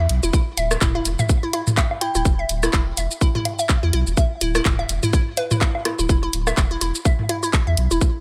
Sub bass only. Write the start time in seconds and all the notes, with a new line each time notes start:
0.09 B1
0.23 E1
0.57 D1
0.81 E1
1.05 E1
2.15 D1
2.25 E1
2.49 D1
2.73 E1
2.97 E1
3.83 E2
3.93 B1
4.07 E1
4.41 D1
4.65 E1
4.89 E1
5.99 D1
6.09 E1
6.33 D1
6.57 E1
6.81 E1
7.67 E2
7.77 B1
7.91 E1